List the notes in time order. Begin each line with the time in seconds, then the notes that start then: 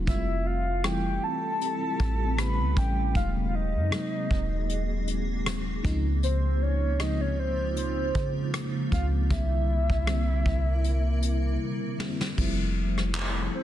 0.06 F1 G3 G#3 C4 E4 F4 G4 A4 E5, kick, closed hi-hat
0.14 A3
0.46 F5
0.83 E3 G3 A3 C4 E4 G5, cross-stick, closed hi-hat
1.23 A5
1.61 closed hi-hat
2.00 A1, kick, closed hi-hat
2.37 C#3 G3 A3 B3 E4 B5, cross-stick, closed hi-hat
2.60 C#2
2.75 A1 C#3 G3 A3 B3 C#4 G5, kick, closed hi-hat
3.14 D#1 C3 F#3 G#3 A#3 D#4 F#4 G#4 F5, kick, closed hi-hat
3.48 F5
3.55 D#5
3.75 F#2
3.90 C3 F#3 G#3 A#3 C4, cross-stick, closed hi-hat
4.31 D#1, kick
4.69 closed hi-hat
5.08 closed hi-hat
5.46 cross-stick, closed hi-hat
5.83 C#2 C#3 F3 G#3 C4 D#4 F4, kick, closed hi-hat
6.23 C5, closed hi-hat
6.62 C#5
6.99 C#3 F3 G#3 C4 D#4 D#5, cross-stick, closed hi-hat
7.21 C#5
7.39 C5
7.77 C5, closed hi-hat
8.15 C#3, kick, closed hi-hat
8.54 cross-stick, closed hi-hat
8.90 C#2 C#3 F3 G#3 C4 F4 F5, kick, closed hi-hat
9.29 C2 C3 D3 G3 A#3 C4 E4 A#4 E5, kick, closed hi-hat
9.90 C2, kick
10.06 D3 G3 A#3 C4 E4, cross-stick, closed hi-hat
10.46 C2, kick
10.84 closed hi-hat
11.22 closed hi-hat
11.98 D3 G3 A#3 C4 E4, snare
12.21 snare
12.37 F1 F3 G3 A3 C4 E4 G4 A4, kick, crash
12.98 cross-stick
13.15 clap, closed hi-hat
13.55 C5